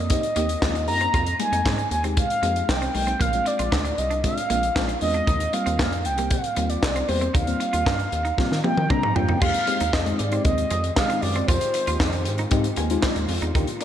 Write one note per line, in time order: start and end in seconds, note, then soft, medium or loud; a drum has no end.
0.00 0.14 F2 loud
0.00 0.87 D#5 loud
0.10 0.23 A#3 medium
0.10 0.23 C4 medium
0.10 0.24 D#4 medium
0.10 0.24 G4 medium
0.10 kick loud
0.10 closed hi-hat loud
0.23 closed hi-hat medium
0.36 0.56 D#2 medium
0.36 0.49 A#3 medium
0.36 0.46 A#3 medium
0.36 0.49 C4 medium
0.36 0.49 D#4 medium
0.36 0.50 G4 medium
0.36 closed hi-hat medium
0.49 closed hi-hat medium
0.61 0.90 D#2 loud
0.61 0.72 G#3 medium
0.61 0.75 A#3 medium
0.61 0.75 C4 medium
0.61 0.75 D#4 medium
0.61 0.75 F4 loud
0.61 kick loud
0.61 snare loud
0.61 clap loud
0.75 muted clean electric guitar stroke soft
0.75 closed hi-hat soft
0.87 1.08 F#2 medium
0.87 1.13 A#3 medium
0.87 1.13 C4 medium
0.87 1.14 D#4 medium
0.87 1.14 G4 medium
0.87 1.36 A#5 loud
0.87 open hi-hat medium
1.01 1.11 C4 medium
1.01 closed hi-hat soft
1.14 1.34 F2 loud
1.14 1.24 F4 medium
1.14 kick loud
1.14 closed hi-hat medium
1.26 closed hi-hat medium
1.39 1.73 G3 medium
1.39 1.72 G#3 medium
1.39 1.73 A#3 medium
1.39 1.73 D#4 medium
1.39 1.88 G#5 loud
1.39 muted clean electric guitar stroke soft
1.39 closed hi-hat medium
1.52 1.62 F2 loud
1.52 1.63 D#4 medium
1.52 closed hi-hat medium
1.66 1.85 G#2 loud
1.66 1.76 C4 medium
1.66 kick loud
1.66 snare medium
1.66 clap medium
1.78 muted clean electric guitar stroke soft
1.78 closed hi-hat soft
1.91 2.21 D#2 loud
1.91 2.03 G#5 loud
1.91 closed hi-hat medium
2.04 2.24 G#3 medium
2.04 2.24 A#3 medium
2.04 2.14 C4 medium
2.04 2.24 D#4 medium
2.04 2.24 G4 medium
2.04 closed hi-hat soft
2.17 2.70 F5 loud
2.17 kick loud
2.17 closed hi-hat medium
2.30 closed hi-hat medium
2.42 2.62 F2 loud
2.42 2.69 G#3 medium
2.42 2.53 G#3 medium
2.42 2.69 A#3 medium
2.42 2.70 D#4 medium
2.42 2.70 G4 medium
2.42 closed hi-hat medium
2.56 closed hi-hat medium
2.69 2.89 C2 loud
2.69 2.94 G5 loud
2.69 kick loud
2.69 snare loud
2.69 clap loud
2.82 2.92 C4 medium
2.82 closed hi-hat medium
2.94 3.15 B1 medium
2.94 3.15 G#3 medium
2.94 3.15 A#3 medium
2.94 3.15 D#4 medium
2.94 3.15 G4 medium
2.94 3.23 G5 loud
2.94 muted clean electric guitar stroke soft
2.94 open hi-hat medium
3.07 3.17 C4 medium
3.07 closed hi-hat soft
3.20 3.40 A#1 loud
3.20 3.30 A#3 medium
3.20 3.48 F5 loud
3.20 kick loud
3.20 closed hi-hat medium
3.33 3.80 G#3 medium
3.33 3.80 C4 medium
3.33 3.80 D4 medium
3.33 3.80 F4 medium
3.33 closed hi-hat medium
3.46 4.00 D5 loud
3.46 muted clean electric guitar stroke soft
3.46 closed hi-hat medium
3.59 3.69 A#1 loud
3.59 3.69 F4 medium
3.59 closed hi-hat medium
3.72 3.92 D2 loud
3.72 3.82 D4 medium
3.72 kick loud
3.72 snare loud
3.72 clap medium
3.85 muted clean electric guitar stroke soft
3.85 closed hi-hat medium
3.98 4.28 C2 loud
3.98 4.24 D#5 medium
3.98 closed hi-hat medium
4.10 4.21 D4 medium
4.10 closed hi-hat soft
4.24 4.37 G#3 medium
4.24 4.37 C4 medium
4.24 4.38 D4 medium
4.24 4.38 F4 medium
4.24 4.98 F5 loud
4.24 kick loud
4.24 closed hi-hat medium
4.38 closed hi-hat medium
4.50 4.70 A#1 loud
4.50 4.63 G#3 medium
4.50 4.60 A#3 medium
4.50 4.63 C4 medium
4.50 4.63 D4 medium
4.50 4.64 F4 medium
4.50 closed hi-hat medium
4.63 closed hi-hat medium
4.76 4.96 A#1 loud
4.76 4.89 G#3 medium
4.76 4.86 C4 medium
4.76 4.89 C4 medium
4.76 4.89 D4 medium
4.76 4.89 F4 medium
4.76 kick loud
4.76 snare loud
4.76 clap loud
4.89 muted clean electric guitar stroke soft
4.89 closed hi-hat medium
5.01 5.22 E2 loud
5.01 5.28 G#3 medium
5.01 5.28 C4 medium
5.01 5.28 D4 medium
5.01 5.28 F4 medium
5.01 5.55 D#5 loud
5.01 open hi-hat medium
5.14 5.24 D4 medium
5.14 closed hi-hat soft
5.27 5.47 D#2 loud
5.27 5.37 D#4 medium
5.27 kick loud
5.27 closed hi-hat medium
5.40 closed hi-hat medium
5.53 5.86 G3 medium
5.53 5.86 A#3 medium
5.53 5.86 C4 medium
5.53 5.87 F4 medium
5.53 6.07 F5 loud
5.53 muted clean electric guitar stroke soft
5.53 closed hi-hat medium
5.66 5.81 D#2 loud
5.66 5.76 C4 medium
5.66 closed hi-hat medium
5.79 6.07 F2 medium
5.79 5.89 A#3 medium
5.79 kick loud
5.79 snare loud
5.79 clap medium
5.92 muted clean electric guitar stroke soft
5.92 closed hi-hat soft
6.05 6.35 C2 medium
6.05 6.32 G5 medium
6.05 closed hi-hat medium
6.17 6.38 G3 medium
6.17 6.38 A#3 medium
6.17 6.28 A#3 medium
6.17 6.38 C4 medium
6.17 6.38 G4 medium
6.17 closed hi-hat medium
6.31 6.71 F5 medium
6.31 kick loud
6.31 closed hi-hat loud
6.44 closed hi-hat medium
6.56 6.77 D#2 medium
6.56 6.83 G3 medium
6.56 6.67 G3 medium
6.56 6.83 A#3 medium
6.56 6.83 C4 medium
6.56 6.83 F4 medium
6.56 closed hi-hat medium
6.69 7.10 D5 medium
6.69 closed hi-hat medium
6.83 7.02 C2 loud
6.83 kick loud
6.83 snare loud
6.83 clap loud
6.96 7.06 C4 medium
6.96 closed hi-hat medium
7.08 7.29 E2 loud
7.08 7.28 G3 medium
7.08 7.28 A#3 medium
7.08 7.28 C4 medium
7.08 7.28 G4 medium
7.08 7.34 C5 medium
7.08 muted clean electric guitar stroke soft
7.08 open hi-hat medium
7.21 7.31 C4 medium
7.21 closed hi-hat soft
7.34 7.54 D#2 loud
7.34 7.44 D#4 medium
7.34 8.60 F5 loud
7.34 kick loud
7.34 closed hi-hat loud
7.47 7.94 G3 medium
7.47 7.94 A#3 medium
7.47 7.94 C4 medium
7.47 7.94 F4 medium
7.47 closed hi-hat medium
7.60 muted clean electric guitar stroke soft
7.60 closed hi-hat medium
7.73 7.83 D#2 loud
7.73 7.83 F4 medium
7.73 closed hi-hat medium
7.86 8.06 G2 loud
7.86 7.96 D#4 loud
7.86 kick loud
7.86 snare loud
7.86 clap medium
7.99 muted clean electric guitar stroke soft
7.99 closed hi-hat soft
8.12 8.32 D#2 medium
8.12 closed hi-hat medium
8.25 8.35 D#4 medium
8.25 closed hi-hat soft
8.37 8.51 G3 medium
8.37 8.51 A#3 medium
8.37 8.51 C4 medium
8.37 8.51 F4 loud
8.37 kick loud
8.37 snare medium
8.52 8.61 D#3 medium
8.52 snare soft
8.64 8.77 G3 medium
8.64 8.77 A#3 medium
8.64 8.74 A#3 medium
8.64 8.77 C4 medium
8.64 8.77 F4 medium
8.64 8.91 G5 loud
8.64 high tom medium
8.78 8.87 D#3 medium
8.78 high tom medium
8.89 9.03 G3 medium
8.89 9.03 A#3 medium
8.89 9.03 C4 medium
8.89 9.00 C4 medium
8.89 9.03 D4 loud
8.89 9.17 A#5 loud
8.89 kick loud
8.89 mid tom medium
9.03 9.13 G#2 medium
9.03 muted clean electric guitar stroke soft
9.03 mid tom medium
9.15 9.26 G2 loud
9.15 9.41 G3 medium
9.15 9.41 A#3 medium
9.15 9.40 C4 medium
9.15 9.41 F4 loud
9.15 9.41 G5 loud
9.15 floor tom loud
9.29 9.39 F#2 medium
9.29 9.39 D#4 medium
9.29 floor tom medium
9.41 9.51 F2 medium
9.41 13.51 D#3 medium
9.41 9.54 G#3 medium
9.41 13.51 G#3 medium
9.41 9.55 C4 medium
9.41 13.51 C4 medium
9.41 9.55 D#4 medium
9.41 9.52 F4 medium
9.41 13.84 F4 medium
9.41 9.55 G4 medium
9.41 13.52 G4 medium
9.41 9.95 F5 loud
9.41 kick loud
9.41 crash loud
9.54 closed hi-hat medium
9.67 9.80 G#3 medium
9.67 9.80 C4 medium
9.67 9.81 D#4 medium
9.67 9.81 G4 medium
9.67 muted clean electric guitar stroke soft
9.67 closed hi-hat medium
9.80 9.91 D#2 medium
9.80 9.91 D#4 medium
9.80 closed hi-hat medium
9.92 10.13 F2 loud
9.92 10.04 C4 medium
9.92 9.99 D#4 medium
9.92 10.00 G#4 medium
9.92 10.20 D#5 loud
9.92 kick loud
9.92 snare loud
9.92 clap medium
10.05 10.19 G#3 medium
10.05 10.19 C4 medium
10.05 10.19 D#4 medium
10.05 10.19 G4 medium
10.05 muted clean electric guitar stroke soft
10.05 closed hi-hat soft
10.18 10.39 G#2 loud
10.18 10.43 D5 medium
10.18 closed hi-hat medium
10.31 10.65 G#3 medium
10.31 10.65 C4 medium
10.31 10.42 C4 medium
10.31 10.65 D#4 medium
10.31 10.65 G4 medium
10.31 closed hi-hat soft
10.44 10.65 D#2 loud
10.44 10.92 D#5 loud
10.44 kick loud
10.44 closed hi-hat medium
10.58 closed hi-hat medium
10.70 10.91 F2 loud
10.70 10.81 G#3 medium
10.70 closed hi-hat medium
10.84 closed hi-hat medium
10.96 11.49 G#3 medium
10.96 11.49 C4 medium
10.96 11.49 D#4 medium
10.96 11.49 G4 medium
10.96 11.23 F5 medium
10.96 kick loud
10.96 snare loud
10.96 clap loud
11.10 11.20 C4 medium
11.10 closed hi-hat medium
11.21 11.42 F#2 loud
11.21 11.47 D5 loud
11.21 muted clean electric guitar stroke soft
11.21 open hi-hat medium
11.35 11.46 C4 medium
11.35 closed hi-hat soft
11.47 11.58 F2 loud
11.47 11.59 F4 medium
11.47 12.47 C5 loud
11.47 kick loud
11.47 closed hi-hat loud
11.61 closed hi-hat medium
11.74 muted clean electric guitar stroke soft
11.74 closed hi-hat medium
11.87 11.97 D#2 medium
11.87 11.97 F4 medium
11.87 closed hi-hat medium
12.00 12.28 F2 loud
12.00 12.10 D#4 medium
12.00 kick loud
12.00 snare loud
12.00 clap medium
12.13 muted clean electric guitar stroke soft
12.13 closed hi-hat soft
12.25 12.46 G#2 loud
12.25 closed hi-hat medium
12.38 12.49 D#4 medium
12.38 closed hi-hat soft
12.51 12.71 G#2 loud
12.51 12.65 G#3 medium
12.51 12.65 C4 medium
12.51 12.65 D#4 medium
12.51 12.65 G4 loud
12.51 kick loud
12.51 closed hi-hat medium
12.64 closed hi-hat medium
12.76 12.97 D#2 loud
12.76 12.87 A#3 medium
12.76 12.84 D#4 medium
12.76 12.84 G4 medium
12.76 12.89 G#5 medium
12.76 closed hi-hat medium
12.90 13.23 G#3 loud
12.90 13.24 C4 loud
12.90 13.24 D#4 loud
12.90 13.24 F4 loud
12.90 13.03 F5 medium
12.90 closed hi-hat medium
13.02 13.13 C4 medium
13.02 13.52 D5 medium
13.02 kick loud
13.02 snare loud
13.02 clap loud
13.16 13.26 D#2 loud
13.16 muted clean electric guitar stroke soft
13.16 closed hi-hat medium
13.28 13.39 F2 loud
13.28 open hi-hat medium
13.42 13.52 E2 medium
13.42 13.52 D#4 medium
13.42 closed hi-hat soft
13.54 13.65 D#2 loud
13.54 13.84 D3 medium
13.54 13.84 G3 medium
13.54 13.84 A#3 medium
13.54 13.68 A#3 medium
13.54 13.68 D4 medium
13.54 13.65 D#4 medium
13.54 13.68 F4 medium
13.54 13.69 G4 medium
13.54 kick loud
13.54 closed hi-hat medium
13.68 closed hi-hat medium
13.81 13.84 A#3 medium
13.81 13.84 D5 medium
13.81 muted clean electric guitar stroke soft
13.81 closed hi-hat medium